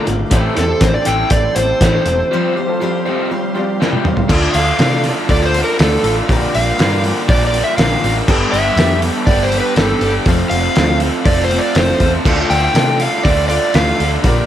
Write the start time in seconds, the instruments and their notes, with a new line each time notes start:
Already playing: accordion A#3 F5 D6, upright piano F4 A#4 D5
0.05 picked electric bass G#1, overdriven electric guitar A#2 D3, steel-string acoustic guitar A3 D4 F4 A4, closed hi-hat
0.29 picked electric bass A1, steel-string acoustic guitar A2 E3 G3 C4 E4, overdriven electric guitar A3, upright piano G4 A4, accordion A4 G5 C6, kick, closed hi-hat
0.33 steel-string acoustic guitar A4, upright piano C5
0.55 picked electric bass E2, overdriven electric guitar A2 E3, steel-string acoustic guitar E4 A4, electric slide guitar A4, snare, closed hi-hat
0.59 steel-string acoustic guitar G3 C4
0.67 upright piano G4 A4 C5
0.81 picked electric bass A1, steel-string acoustic guitar A2 E3 G3 C4 E4 A4, electric slide guitar C5, kick, snare, closed hi-hat
0.94 electric slide guitar D5
1.05 picked electric bass A1, overdriven electric guitar A2 E3 A3, steel-string acoustic guitar C4 E4 A4, electric slide guitar G5, closed hi-hat
1.10 steel-string acoustic guitar G3
1.30 picked electric bass A1, overdriven electric guitar A2 E3, steel-string acoustic guitar G3 C4 E4, electric slide guitar D5, kick, closed hi-hat
1.35 steel-string acoustic guitar A4
1.54 picked electric bass A1, overdriven electric guitar A2 E3, upright piano G4 A4 C5, steel-string acoustic guitar A4, electric slide guitar C5, closed hi-hat
1.59 steel-string acoustic guitar G3 C4 E4
1.81 picked electric bass A1, steel-string acoustic guitar A2 E3 G3 C4 A4, overdriven electric guitar A3, kick, snare, closed hi-hat
1.85 steel-string acoustic guitar E4
2.06 picked electric bass E1, overdriven electric guitar A2 E3, steel-string acoustic guitar C4 E4 A4, closed hi-hat
2.10 steel-string acoustic guitar G3
2.30 steel-string acoustic guitar F3 G3 C4, upright piano F4 G4 C5, accordion G4 F5 C6
2.34 steel-string acoustic guitar G4 C5
2.56 overdriven electric guitar F3 G3, steel-string acoustic guitar C4 G4 C5
2.67 upright piano F4 G4 A4
2.81 steel-string acoustic guitar F3 G3 C4 G4 C5
3.05 overdriven electric guitar F3 G3, steel-string acoustic guitar C4 G4 C5
3.30 overdriven electric guitar F3, steel-string acoustic guitar G3 C4 G4 C5
3.54 overdriven electric guitar F3 G3, upright piano F4 G4 D5, steel-string acoustic guitar G4 C5
3.58 steel-string acoustic guitar C4
3.82 steel-string acoustic guitar F3 G3 C4 G4 C5, snare
3.93 high tom
4.05 overdriven electric guitar F3 G3, steel-string acoustic guitar C4 G4 C5, mid tom
4.17 floor tom
4.27 picked electric bass D2, steel-string acoustic guitar D3 A3 D4 F4 A4, upright piano F4 A4 D5, accordion F5 D6, kick, crash
4.32 accordion A4
4.54 picked electric bass D2, steel-string acoustic guitar A4, electric slide guitar F5, open hi-hat
4.58 steel-string acoustic guitar D4
4.78 picked electric bass C3, steel-string acoustic guitar D3 A3 D4 F4 A4, upright piano F4 A4 D5, snare, open hi-hat
5.04 steel-string acoustic guitar F4 A4, snare, open hi-hat
5.08 steel-string acoustic guitar D4
5.28 picked electric bass D2, overdriven electric guitar D3, steel-string acoustic guitar A3 D4 F4 A4, electric slide guitar D5, kick, open hi-hat
5.42 electric slide guitar A#4 C5
5.54 overdriven electric guitar A3, steel-string acoustic guitar D4 F4 A4, open hi-hat
5.64 electric slide guitar A#4
5.79 picked electric bass D2, steel-string acoustic guitar D3 A3 D4 F4 A4, electric slide guitar A4, snare, open hi-hat
6.04 picked electric bass A1, overdriven electric guitar A3, steel-string acoustic guitar D4 F4 A4, open hi-hat
6.29 picked electric bass A#1, steel-string acoustic guitar A#2 D3 G3 D4 F4, overdriven electric guitar A#3, upright piano G4 A#4 D5, accordion A#4 G5, kick, open hi-hat
6.33 steel-string acoustic guitar A#4
6.54 picked electric bass A#1, steel-string acoustic guitar G3 D4 F4 A#4, electric slide guitar F5, open hi-hat
6.79 picked electric bass G2, steel-string acoustic guitar A#2 D3 G3 D4 F4 A#4, overdriven electric guitar A#3, upright piano G4 A#4 F5, snare, open hi-hat
7.04 steel-string acoustic guitar G3 D4 F4 A#4, open hi-hat
7.29 picked electric bass A#1, overdriven electric guitar D3 A#3, steel-string acoustic guitar G3 D4 F4 A#4, electric slide guitar D5, kick, open hi-hat
7.47 electric slide guitar D5
7.53 steel-string acoustic guitar G3 D4 F4 A#4, overdriven electric guitar A#3, open hi-hat
7.64 electric slide guitar E5
7.77 picked electric bass A#1, steel-string acoustic guitar A#2 D3 G3, overdriven electric guitar A#3, electric slide guitar F5, snare, open hi-hat
7.82 steel-string acoustic guitar D4 F4 A#4
8.04 picked electric bass A1, steel-string acoustic guitar G3 D4 F4 A#4, overdriven electric guitar A#3, open hi-hat
8.27 picked electric bass G1, overdriven electric guitar G2 D3, steel-string acoustic guitar G3 B3 D4 G4 A4, upright piano G4 A4 B4, accordion A4 B5, kick, crash
8.52 picked electric bass G1, steel-string acoustic guitar D4 G4 A4, electric slide guitar E5, open hi-hat
8.76 picked electric bass F2, steel-string acoustic guitar G3 B3 D4 G4 A4, upright piano G4 A4, snare, open hi-hat
8.80 upright piano B4
9.01 steel-string acoustic guitar D4 G4 A4, open hi-hat
9.27 picked electric bass G1, overdriven electric guitar G3, steel-string acoustic guitar B3 D4 G4 A4, electric slide guitar D5, kick, open hi-hat
9.43 electric slide guitar C5
9.52 overdriven electric guitar G3 B3, steel-string acoustic guitar D4 G4 A4, open hi-hat
9.61 electric slide guitar B4
9.76 picked electric bass G1, overdriven electric guitar G2 D3, steel-string acoustic guitar G3 B3 D4 G4 A4, electric slide guitar A4, snare, open hi-hat
10.01 picked electric bass G1, overdriven electric guitar B3, steel-string acoustic guitar G4 A4, open hi-hat
10.06 overdriven electric guitar G3, steel-string acoustic guitar D4
10.25 picked electric bass F1, overdriven electric guitar F2 C3, steel-string acoustic guitar F3 C4, upright piano F4 A4 C5, accordion F5 C6, kick, open hi-hat
10.29 steel-string acoustic guitar A3 F4 A4
10.50 picked electric bass F1, steel-string acoustic guitar F4 A4, electric slide guitar F5, open hi-hat
10.54 steel-string acoustic guitar C4
10.76 picked electric bass D2, steel-string acoustic guitar F3 A3 C4, upright piano F4 A4 C5, snare, open hi-hat
10.80 steel-string acoustic guitar F4 A4
11.00 steel-string acoustic guitar F4 A4, open hi-hat
11.05 steel-string acoustic guitar C4
11.23 picked electric bass F1, overdriven electric guitar F3, electric slide guitar D5, kick, open hi-hat
11.28 steel-string acoustic guitar A3 C4 F4 A4
11.44 electric slide guitar C5
11.51 overdriven electric guitar F3 A3, steel-string acoustic guitar C4 F4 A4, open hi-hat
11.58 electric slide guitar D5
11.75 picked electric bass F1, overdriven electric guitar F2 C3, steel-string acoustic guitar F3 A3 C4 F4 A4, electric slide guitar C5, snare, open hi-hat
12.00 picked electric bass E2, overdriven electric guitar F3 A3 C4, steel-string acoustic guitar F4 A4, kick, open hi-hat
12.04 steel-string acoustic guitar C4
12.25 picked electric bass D2, steel-string acoustic guitar D3 A3 D4 F4 A4, upright piano F4 A4 D5, accordion D6, kick, crash
12.50 picked electric bass D2, steel-string acoustic guitar D4 F4 A4, electric slide guitar G5, open hi-hat
12.74 picked electric bass C3, steel-string acoustic guitar D3 A3 D4 F4 A4, upright piano F4 A4 D5, snare, open hi-hat
13.00 steel-string acoustic guitar D4 F4 A4, electric slide guitar F5, open hi-hat
13.23 picked electric bass D2, overdriven electric guitar D3, steel-string acoustic guitar A3 D4 F4 A4, electric slide guitar D5, kick, open hi-hat
13.48 overdriven electric guitar A3, steel-string acoustic guitar D4 F4 A4, electric slide guitar D5, open hi-hat
13.74 picked electric bass D2, steel-string acoustic guitar D3 A3 D4 F4 A4, electric slide guitar F5, snare, open hi-hat
13.97 picked electric bass D2, overdriven electric guitar A3 F4, steel-string acoustic guitar A4, open hi-hat
14.01 steel-string acoustic guitar D4 F4
14.23 picked electric bass A#1, steel-string acoustic guitar A#2 D3 G3 D4 F4 A#4, overdriven electric guitar A#3, upright piano G4 A#4 D5, accordion A#4 G5 D6, kick, open hi-hat